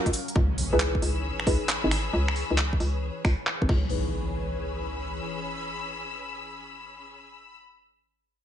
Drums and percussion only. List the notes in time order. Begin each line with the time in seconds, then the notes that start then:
0.06 kick, closed hi-hat, cabasa
0.13 open hi-hat, cabasa
0.28 closed hi-hat, cabasa
0.36 kick
0.58 open hi-hat
0.80 clap
0.95 kick
1.02 open hi-hat
1.40 finger snap
1.47 kick, open hi-hat
1.69 clap
1.91 finger snap, open hi-hat
2.28 finger snap
2.36 open hi-hat
2.58 clap
2.73 kick
2.80 open hi-hat
3.25 finger snap, kick, open hi-hat
3.47 clap
3.62 kick
3.69 kick, crash